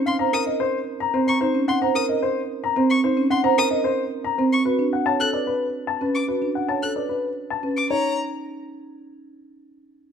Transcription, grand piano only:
0, 0, Header, 1, 2, 480
1, 0, Start_track
1, 0, Tempo, 540541
1, 1256, Time_signature, 3, 2, 24, 8
1, 8989, End_track
2, 0, Start_track
2, 0, Title_t, "Grand piano"
2, 0, Program_c, 0, 0
2, 52, Note_on_c, 0, 77, 61
2, 170, Note_on_c, 0, 82, 76
2, 210, Note_off_c, 0, 77, 0
2, 292, Note_on_c, 0, 70, 55
2, 330, Note_off_c, 0, 82, 0
2, 411, Note_on_c, 0, 75, 52
2, 450, Note_off_c, 0, 70, 0
2, 532, Note_on_c, 0, 72, 77
2, 570, Note_off_c, 0, 75, 0
2, 691, Note_off_c, 0, 72, 0
2, 891, Note_on_c, 0, 82, 76
2, 1011, Note_on_c, 0, 72, 67
2, 1050, Note_off_c, 0, 82, 0
2, 1129, Note_on_c, 0, 82, 55
2, 1170, Note_off_c, 0, 72, 0
2, 1251, Note_on_c, 0, 72, 72
2, 1289, Note_off_c, 0, 82, 0
2, 1410, Note_off_c, 0, 72, 0
2, 1492, Note_on_c, 0, 78, 64
2, 1614, Note_on_c, 0, 82, 74
2, 1650, Note_off_c, 0, 78, 0
2, 1732, Note_on_c, 0, 70, 57
2, 1771, Note_off_c, 0, 82, 0
2, 1856, Note_on_c, 0, 75, 56
2, 1890, Note_off_c, 0, 70, 0
2, 1976, Note_on_c, 0, 72, 77
2, 2012, Note_off_c, 0, 75, 0
2, 2132, Note_off_c, 0, 72, 0
2, 2341, Note_on_c, 0, 82, 77
2, 2459, Note_on_c, 0, 72, 64
2, 2494, Note_off_c, 0, 82, 0
2, 2613, Note_off_c, 0, 72, 0
2, 2699, Note_on_c, 0, 72, 72
2, 2853, Note_off_c, 0, 72, 0
2, 2934, Note_on_c, 0, 78, 65
2, 3053, Note_on_c, 0, 82, 87
2, 3091, Note_off_c, 0, 78, 0
2, 3177, Note_on_c, 0, 70, 52
2, 3211, Note_off_c, 0, 82, 0
2, 3292, Note_on_c, 0, 75, 63
2, 3332, Note_off_c, 0, 70, 0
2, 3412, Note_on_c, 0, 72, 73
2, 3450, Note_off_c, 0, 75, 0
2, 3570, Note_off_c, 0, 72, 0
2, 3769, Note_on_c, 0, 82, 74
2, 3889, Note_on_c, 0, 72, 58
2, 3929, Note_off_c, 0, 82, 0
2, 4049, Note_off_c, 0, 72, 0
2, 4132, Note_on_c, 0, 71, 72
2, 4290, Note_off_c, 0, 71, 0
2, 4376, Note_on_c, 0, 78, 57
2, 4492, Note_on_c, 0, 81, 78
2, 4532, Note_off_c, 0, 78, 0
2, 4614, Note_on_c, 0, 69, 56
2, 4650, Note_off_c, 0, 81, 0
2, 4737, Note_on_c, 0, 74, 50
2, 4771, Note_off_c, 0, 69, 0
2, 4856, Note_on_c, 0, 71, 65
2, 4892, Note_off_c, 0, 74, 0
2, 5012, Note_off_c, 0, 71, 0
2, 5215, Note_on_c, 0, 81, 67
2, 5342, Note_on_c, 0, 71, 59
2, 5371, Note_off_c, 0, 81, 0
2, 5494, Note_off_c, 0, 71, 0
2, 5579, Note_on_c, 0, 71, 57
2, 5733, Note_off_c, 0, 71, 0
2, 5818, Note_on_c, 0, 78, 52
2, 5937, Note_on_c, 0, 81, 61
2, 5972, Note_off_c, 0, 78, 0
2, 6057, Note_on_c, 0, 69, 49
2, 6092, Note_off_c, 0, 81, 0
2, 6179, Note_on_c, 0, 74, 48
2, 6212, Note_off_c, 0, 69, 0
2, 6297, Note_on_c, 0, 71, 58
2, 6333, Note_off_c, 0, 74, 0
2, 6452, Note_off_c, 0, 71, 0
2, 6664, Note_on_c, 0, 81, 59
2, 6782, Note_on_c, 0, 71, 43
2, 6815, Note_off_c, 0, 81, 0
2, 6934, Note_off_c, 0, 71, 0
2, 7020, Note_on_c, 0, 73, 64
2, 7241, Note_off_c, 0, 73, 0
2, 8989, End_track
0, 0, End_of_file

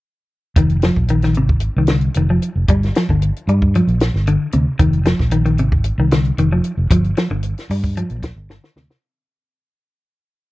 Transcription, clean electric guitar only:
0, 0, Header, 1, 2, 480
1, 0, Start_track
1, 0, Tempo, 528634
1, 512, Time_signature, 4, 2, 24, 8
1, 9547, End_track
2, 0, Start_track
2, 0, Title_t, "Clean electric guitar"
2, 0, Program_c, 0, 27
2, 521, Note_on_c, 0, 51, 81
2, 687, Note_off_c, 0, 51, 0
2, 769, Note_on_c, 0, 53, 65
2, 933, Note_off_c, 0, 53, 0
2, 1002, Note_on_c, 0, 51, 69
2, 1087, Note_off_c, 0, 51, 0
2, 1128, Note_on_c, 0, 51, 66
2, 1206, Note_off_c, 0, 51, 0
2, 1247, Note_on_c, 0, 48, 62
2, 1412, Note_off_c, 0, 48, 0
2, 1619, Note_on_c, 0, 51, 68
2, 1694, Note_off_c, 0, 51, 0
2, 1729, Note_on_c, 0, 50, 67
2, 1894, Note_off_c, 0, 50, 0
2, 1972, Note_on_c, 0, 51, 69
2, 2055, Note_off_c, 0, 51, 0
2, 2090, Note_on_c, 0, 53, 63
2, 2256, Note_off_c, 0, 53, 0
2, 2450, Note_on_c, 0, 55, 79
2, 2615, Note_off_c, 0, 55, 0
2, 2699, Note_on_c, 0, 53, 69
2, 2780, Note_off_c, 0, 53, 0
2, 2817, Note_on_c, 0, 50, 64
2, 2981, Note_off_c, 0, 50, 0
2, 3171, Note_on_c, 0, 55, 65
2, 3336, Note_off_c, 0, 55, 0
2, 3412, Note_on_c, 0, 53, 77
2, 3576, Note_off_c, 0, 53, 0
2, 3884, Note_on_c, 0, 50, 72
2, 4051, Note_off_c, 0, 50, 0
2, 4117, Note_on_c, 0, 48, 70
2, 4286, Note_off_c, 0, 48, 0
2, 4353, Note_on_c, 0, 51, 89
2, 4523, Note_off_c, 0, 51, 0
2, 4591, Note_on_c, 0, 53, 66
2, 4762, Note_off_c, 0, 53, 0
2, 4831, Note_on_c, 0, 51, 78
2, 4921, Note_off_c, 0, 51, 0
2, 4954, Note_on_c, 0, 51, 70
2, 5038, Note_off_c, 0, 51, 0
2, 5079, Note_on_c, 0, 48, 68
2, 5247, Note_off_c, 0, 48, 0
2, 5445, Note_on_c, 0, 51, 70
2, 5524, Note_off_c, 0, 51, 0
2, 5559, Note_on_c, 0, 50, 77
2, 5726, Note_off_c, 0, 50, 0
2, 5802, Note_on_c, 0, 51, 74
2, 5888, Note_off_c, 0, 51, 0
2, 5925, Note_on_c, 0, 53, 65
2, 6091, Note_off_c, 0, 53, 0
2, 6280, Note_on_c, 0, 53, 86
2, 6446, Note_off_c, 0, 53, 0
2, 6515, Note_on_c, 0, 53, 71
2, 6603, Note_off_c, 0, 53, 0
2, 6638, Note_on_c, 0, 50, 69
2, 6807, Note_off_c, 0, 50, 0
2, 7000, Note_on_c, 0, 55, 69
2, 7166, Note_off_c, 0, 55, 0
2, 7240, Note_on_c, 0, 53, 81
2, 7405, Note_off_c, 0, 53, 0
2, 7727, Note_on_c, 0, 50, 80
2, 7889, Note_off_c, 0, 50, 0
2, 7969, Note_on_c, 0, 48, 72
2, 8131, Note_off_c, 0, 48, 0
2, 9547, End_track
0, 0, End_of_file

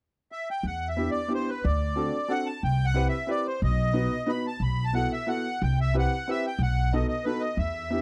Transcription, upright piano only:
0, 0, Header, 1, 2, 480
1, 0, Start_track
1, 0, Tempo, 330579
1, 935, Time_signature, 3, 2, 24, 8
1, 11641, End_track
2, 0, Start_track
2, 0, Title_t, "Upright piano"
2, 0, Program_c, 0, 0
2, 1399, Note_on_c, 0, 59, 47
2, 1402, Note_on_c, 0, 62, 46
2, 1411, Note_on_c, 0, 64, 51
2, 1422, Note_on_c, 0, 67, 52
2, 1658, Note_off_c, 0, 59, 0
2, 1660, Note_off_c, 0, 62, 0
2, 1664, Note_off_c, 0, 64, 0
2, 1670, Note_off_c, 0, 67, 0
2, 1860, Note_on_c, 0, 59, 46
2, 1866, Note_on_c, 0, 62, 51
2, 1870, Note_on_c, 0, 64, 44
2, 1878, Note_on_c, 0, 67, 55
2, 2130, Note_off_c, 0, 59, 0
2, 2134, Note_off_c, 0, 62, 0
2, 2136, Note_off_c, 0, 64, 0
2, 2140, Note_off_c, 0, 67, 0
2, 2839, Note_on_c, 0, 60, 54
2, 2842, Note_on_c, 0, 62, 49
2, 2845, Note_on_c, 0, 66, 49
2, 2859, Note_on_c, 0, 69, 64
2, 3098, Note_off_c, 0, 60, 0
2, 3099, Note_off_c, 0, 62, 0
2, 3101, Note_off_c, 0, 66, 0
2, 3108, Note_off_c, 0, 69, 0
2, 3315, Note_on_c, 0, 62, 55
2, 3316, Note_on_c, 0, 60, 61
2, 3317, Note_on_c, 0, 66, 44
2, 3330, Note_on_c, 0, 69, 63
2, 3574, Note_off_c, 0, 62, 0
2, 3575, Note_off_c, 0, 60, 0
2, 3575, Note_off_c, 0, 66, 0
2, 3582, Note_off_c, 0, 69, 0
2, 4270, Note_on_c, 0, 60, 58
2, 4286, Note_on_c, 0, 67, 51
2, 4290, Note_on_c, 0, 64, 54
2, 4298, Note_on_c, 0, 71, 69
2, 4528, Note_off_c, 0, 60, 0
2, 4536, Note_off_c, 0, 67, 0
2, 4539, Note_off_c, 0, 64, 0
2, 4543, Note_off_c, 0, 71, 0
2, 4745, Note_on_c, 0, 60, 47
2, 4751, Note_on_c, 0, 64, 51
2, 4762, Note_on_c, 0, 67, 49
2, 4769, Note_on_c, 0, 71, 54
2, 5004, Note_off_c, 0, 60, 0
2, 5007, Note_off_c, 0, 64, 0
2, 5013, Note_off_c, 0, 67, 0
2, 5016, Note_off_c, 0, 71, 0
2, 5710, Note_on_c, 0, 59, 61
2, 5713, Note_on_c, 0, 63, 50
2, 5733, Note_on_c, 0, 66, 50
2, 5737, Note_on_c, 0, 71, 59
2, 5968, Note_off_c, 0, 59, 0
2, 5970, Note_off_c, 0, 63, 0
2, 5980, Note_off_c, 0, 66, 0
2, 5982, Note_off_c, 0, 71, 0
2, 6190, Note_on_c, 0, 59, 55
2, 6197, Note_on_c, 0, 63, 47
2, 6205, Note_on_c, 0, 66, 44
2, 6217, Note_on_c, 0, 71, 53
2, 6452, Note_off_c, 0, 59, 0
2, 6456, Note_off_c, 0, 63, 0
2, 6459, Note_off_c, 0, 66, 0
2, 6465, Note_off_c, 0, 71, 0
2, 7159, Note_on_c, 0, 59, 43
2, 7175, Note_on_c, 0, 64, 53
2, 7181, Note_on_c, 0, 66, 43
2, 7187, Note_on_c, 0, 69, 56
2, 7420, Note_off_c, 0, 59, 0
2, 7429, Note_off_c, 0, 64, 0
2, 7432, Note_off_c, 0, 66, 0
2, 7435, Note_off_c, 0, 69, 0
2, 7645, Note_on_c, 0, 59, 46
2, 7651, Note_on_c, 0, 64, 44
2, 7652, Note_on_c, 0, 66, 47
2, 7664, Note_on_c, 0, 69, 52
2, 7904, Note_off_c, 0, 59, 0
2, 7906, Note_off_c, 0, 64, 0
2, 7907, Note_off_c, 0, 66, 0
2, 7913, Note_off_c, 0, 69, 0
2, 8623, Note_on_c, 0, 60, 53
2, 8631, Note_on_c, 0, 64, 53
2, 8633, Note_on_c, 0, 67, 57
2, 8645, Note_on_c, 0, 71, 60
2, 8871, Note_off_c, 0, 60, 0
2, 8875, Note_off_c, 0, 64, 0
2, 8876, Note_off_c, 0, 67, 0
2, 8882, Note_off_c, 0, 71, 0
2, 9110, Note_on_c, 0, 60, 54
2, 9116, Note_on_c, 0, 64, 45
2, 9127, Note_on_c, 0, 67, 52
2, 9134, Note_on_c, 0, 71, 57
2, 9353, Note_off_c, 0, 60, 0
2, 9356, Note_off_c, 0, 64, 0
2, 9361, Note_off_c, 0, 67, 0
2, 9365, Note_off_c, 0, 71, 0
2, 10062, Note_on_c, 0, 59, 61
2, 10066, Note_on_c, 0, 63, 50
2, 10068, Note_on_c, 0, 66, 50
2, 10072, Note_on_c, 0, 69, 66
2, 10305, Note_off_c, 0, 59, 0
2, 10307, Note_off_c, 0, 63, 0
2, 10308, Note_off_c, 0, 66, 0
2, 10310, Note_off_c, 0, 69, 0
2, 10531, Note_on_c, 0, 59, 43
2, 10543, Note_on_c, 0, 63, 48
2, 10552, Note_on_c, 0, 66, 46
2, 10553, Note_on_c, 0, 69, 59
2, 10778, Note_off_c, 0, 59, 0
2, 10784, Note_off_c, 0, 63, 0
2, 10789, Note_off_c, 0, 66, 0
2, 10789, Note_off_c, 0, 69, 0
2, 11473, Note_on_c, 0, 59, 52
2, 11481, Note_on_c, 0, 62, 44
2, 11488, Note_on_c, 0, 64, 44
2, 11500, Note_on_c, 0, 67, 54
2, 11641, Note_off_c, 0, 59, 0
2, 11641, Note_off_c, 0, 62, 0
2, 11641, Note_off_c, 0, 64, 0
2, 11641, Note_off_c, 0, 67, 0
2, 11641, End_track
0, 0, End_of_file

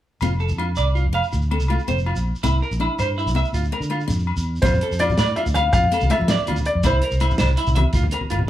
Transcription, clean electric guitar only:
0, 0, Header, 1, 3, 480
1, 0, Start_track
1, 0, Key_signature, -1, "major"
1, 0, Tempo, 367872
1, 292, Time_signature, 12, 3, 24, 8
1, 11086, End_track
2, 0, Start_track
2, 0, Title_t, "Clean electric guitar"
2, 0, Program_c, 0, 27
2, 289, Note_on_c, 0, 65, 70
2, 425, Note_off_c, 0, 65, 0
2, 524, Note_on_c, 0, 69, 58
2, 661, Note_off_c, 0, 69, 0
2, 762, Note_on_c, 0, 65, 56
2, 900, Note_off_c, 0, 65, 0
2, 1004, Note_on_c, 0, 74, 69
2, 1142, Note_off_c, 0, 74, 0
2, 1242, Note_on_c, 0, 65, 61
2, 1380, Note_off_c, 0, 65, 0
2, 1490, Note_on_c, 0, 77, 69
2, 1626, Note_off_c, 0, 77, 0
2, 1983, Note_on_c, 0, 69, 54
2, 2116, Note_off_c, 0, 69, 0
2, 2214, Note_on_c, 0, 65, 69
2, 2349, Note_off_c, 0, 65, 0
2, 2458, Note_on_c, 0, 72, 75
2, 2592, Note_off_c, 0, 72, 0
2, 2694, Note_on_c, 0, 65, 54
2, 2829, Note_off_c, 0, 65, 0
2, 3175, Note_on_c, 0, 64, 73
2, 3310, Note_off_c, 0, 64, 0
2, 3423, Note_on_c, 0, 70, 66
2, 3556, Note_off_c, 0, 70, 0
2, 3666, Note_on_c, 0, 64, 67
2, 3798, Note_off_c, 0, 64, 0
2, 3909, Note_on_c, 0, 72, 87
2, 4040, Note_off_c, 0, 72, 0
2, 4147, Note_on_c, 0, 64, 65
2, 4279, Note_off_c, 0, 64, 0
2, 4386, Note_on_c, 0, 76, 73
2, 4518, Note_off_c, 0, 76, 0
2, 4622, Note_on_c, 0, 65, 58
2, 4755, Note_off_c, 0, 65, 0
2, 4865, Note_on_c, 0, 70, 62
2, 4997, Note_off_c, 0, 70, 0
2, 5103, Note_on_c, 0, 65, 62
2, 5236, Note_off_c, 0, 65, 0
2, 6047, Note_on_c, 0, 65, 69
2, 6184, Note_off_c, 0, 65, 0
2, 6297, Note_on_c, 0, 69, 64
2, 6432, Note_off_c, 0, 69, 0
2, 6539, Note_on_c, 0, 65, 69
2, 6673, Note_off_c, 0, 65, 0
2, 6769, Note_on_c, 0, 74, 80
2, 6906, Note_off_c, 0, 74, 0
2, 7009, Note_on_c, 0, 65, 71
2, 7145, Note_off_c, 0, 65, 0
2, 7249, Note_on_c, 0, 77, 71
2, 7386, Note_off_c, 0, 77, 0
2, 7498, Note_on_c, 0, 65, 66
2, 7632, Note_off_c, 0, 65, 0
2, 7740, Note_on_c, 0, 69, 68
2, 7873, Note_off_c, 0, 69, 0
2, 7978, Note_on_c, 0, 65, 59
2, 8112, Note_off_c, 0, 65, 0
2, 8228, Note_on_c, 0, 74, 77
2, 8359, Note_off_c, 0, 74, 0
2, 8454, Note_on_c, 0, 65, 63
2, 8589, Note_off_c, 0, 65, 0
2, 8935, Note_on_c, 0, 64, 86
2, 9069, Note_off_c, 0, 64, 0
2, 9178, Note_on_c, 0, 70, 59
2, 9311, Note_off_c, 0, 70, 0
2, 9410, Note_on_c, 0, 64, 62
2, 9545, Note_off_c, 0, 64, 0
2, 9640, Note_on_c, 0, 72, 73
2, 9778, Note_off_c, 0, 72, 0
2, 9886, Note_on_c, 0, 64, 73
2, 10023, Note_off_c, 0, 64, 0
2, 10117, Note_on_c, 0, 76, 69
2, 10256, Note_off_c, 0, 76, 0
2, 10373, Note_on_c, 0, 65, 71
2, 10508, Note_off_c, 0, 65, 0
2, 10598, Note_on_c, 0, 70, 61
2, 10737, Note_off_c, 0, 70, 0
2, 10835, Note_on_c, 0, 65, 68
2, 10974, Note_off_c, 0, 65, 0
2, 11086, End_track
3, 0, Start_track
3, 0, Title_t, "Muted clean electric guitar strokes"
3, 1729, Note_on_c, 9, 29, 61
3, 1859, Note_off_c, 9, 29, 0
3, 11086, End_track
0, 0, End_of_file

